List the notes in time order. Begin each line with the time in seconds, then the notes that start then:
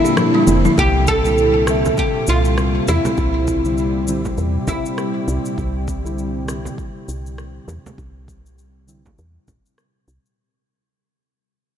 Already playing: A#2 D3 F3 G3 C4 D4 E4 A4
0.05 G4, shaker
0.17 cross-stick, low conga, shaker
0.35 G3
0.47 F1 D3 G3 C4 E4, shaker
0.65 E4, low conga, shaker
0.78 C2 G4, kick, shaker
0.87 C3
1.07 A4, kick, shaker
1.15 G3
1.25 D3 G3 C4 E4, shaker
1.38 shaker
1.47 C4
1.67 D3 G3 C4 E5, cross-stick, shaker
1.73 G4
1.85 frame drum, shaker
1.98 G4, kick, shaker
2.27 C2 F4, shaker
2.45 shaker
2.58 cross-stick, shaker
2.88 E2 E4, frame drum, shaker
3.05 frame drum, shaker
3.17 C2, kick, shaker
3.48 kick, shaker
3.64 D3 G3 C4 E4, shaker
3.78 shaker
4.08 D3 G3 C4 E4, shaker
4.25 kick, frame drum, shaker
4.38 E2, shaker
4.67 A#1 E4, kick, frame drum, shaker
4.86 shaker
4.98 cross-stick, shaker
5.28 C2, shaker
5.45 shaker
5.58 C2, kick, shaker
5.88 kick, shaker
6.04 D3 G3 C4 E4, shaker
6.18 shaker
6.46 D3 G3 C4 E4, cross-stick, shaker
6.65 frame drum, shaker
6.78 kick, shaker
7.08 C2, shaker
7.26 shaker
7.38 cross-stick, shaker
7.68 E2, frame drum, shaker
7.86 frame drum, shaker
7.98 C2, kick, shaker
8.28 kick, shaker
8.46 shaker
8.58 shaker
8.87 D3 G3 C4 E4, shaker
9.06 kick, frame drum, shaker
9.18 E2, shaker
9.48 A#1, kick, frame drum, shaker
9.66 shaker
9.78 cross-stick, shaker
10.08 C2, shaker
10.26 shaker